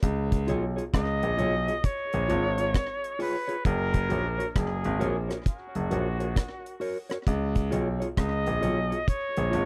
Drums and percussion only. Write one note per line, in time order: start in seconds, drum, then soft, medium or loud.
0.03 kick loud
0.03 closed hi-hat medium
0.32 kick medium
0.32 closed hi-hat medium
0.48 closed hi-hat medium
0.78 closed hi-hat soft
0.94 kick loud
0.94 cross-stick loud
0.94 closed hi-hat medium
1.23 closed hi-hat medium
1.39 closed hi-hat medium
1.68 closed hi-hat soft
1.84 kick loud
1.84 closed hi-hat medium
2.13 closed hi-hat medium
2.30 closed hi-hat medium
2.58 closed hi-hat medium
2.74 kick loud
2.74 cross-stick loud
2.74 closed hi-hat medium
3.04 closed hi-hat medium
3.20 open hi-hat medium
3.49 closed hi-hat medium
3.65 kick loud
3.65 closed hi-hat medium
3.94 kick medium
3.94 closed hi-hat medium
4.10 closed hi-hat medium
4.40 closed hi-hat soft
4.56 kick loud
4.56 cross-stick loud
4.56 closed hi-hat medium
4.84 closed hi-hat medium
5.01 closed hi-hat medium
5.30 cross-stick medium
5.30 closed hi-hat soft
5.46 kick loud
5.46 closed hi-hat medium
5.75 closed hi-hat medium
5.91 closed hi-hat medium
6.20 closed hi-hat medium
6.36 kick loud
6.36 cross-stick loud
6.36 closed hi-hat medium
6.66 closed hi-hat medium
6.81 open hi-hat medium
7.10 cross-stick medium
7.10 closed hi-hat medium
7.27 kick loud
7.27 closed hi-hat medium
7.55 kick medium
7.55 closed hi-hat medium
7.72 closed hi-hat medium
8.02 closed hi-hat medium
8.17 kick loud
8.17 cross-stick loud
8.17 closed hi-hat medium
8.46 closed hi-hat medium
8.63 closed hi-hat medium
8.92 closed hi-hat soft
9.08 kick loud
9.08 closed hi-hat medium
9.37 closed hi-hat medium
9.53 closed hi-hat medium